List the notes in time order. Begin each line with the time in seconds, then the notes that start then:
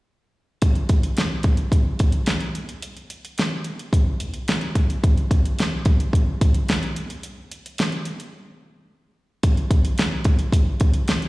0.62 kick, closed hi-hat
0.75 closed hi-hat
0.89 kick, closed hi-hat
1.03 closed hi-hat
1.17 snare, closed hi-hat
1.43 kick, closed hi-hat
1.57 closed hi-hat
1.72 kick, closed hi-hat
1.99 kick, closed hi-hat
2.12 closed hi-hat
2.26 snare, closed hi-hat
2.40 closed hi-hat
2.55 closed hi-hat
2.69 closed hi-hat
2.82 closed hi-hat
2.97 closed hi-hat
3.10 closed hi-hat
3.25 closed hi-hat
3.38 snare, closed hi-hat
3.64 closed hi-hat
3.79 closed hi-hat
3.93 kick, closed hi-hat
4.20 closed hi-hat
4.34 closed hi-hat
4.48 snare, closed hi-hat
4.61 closed hi-hat
4.75 kick, closed hi-hat
4.90 closed hi-hat
5.04 kick, closed hi-hat
5.17 closed hi-hat
5.31 kick, closed hi-hat
5.46 closed hi-hat
5.59 snare, closed hi-hat
5.85 kick, closed hi-hat
6.00 closed hi-hat
6.13 kick, closed hi-hat
6.41 kick, closed hi-hat
6.54 closed hi-hat
6.69 snare, closed hi-hat
6.83 closed hi-hat
6.96 closed hi-hat
7.10 closed hi-hat
7.23 closed hi-hat
7.51 closed hi-hat
7.66 closed hi-hat
7.78 snare, closed hi-hat
7.92 closed hi-hat
8.05 closed hi-hat
8.20 closed hi-hat
9.43 kick, closed hi-hat
9.57 closed hi-hat
9.71 kick, closed hi-hat
9.85 closed hi-hat
9.98 snare, closed hi-hat
10.24 kick, closed hi-hat
10.39 closed hi-hat
10.52 kick, closed hi-hat
10.80 kick, closed hi-hat
10.94 closed hi-hat
11.08 snare, closed hi-hat
11.22 closed hi-hat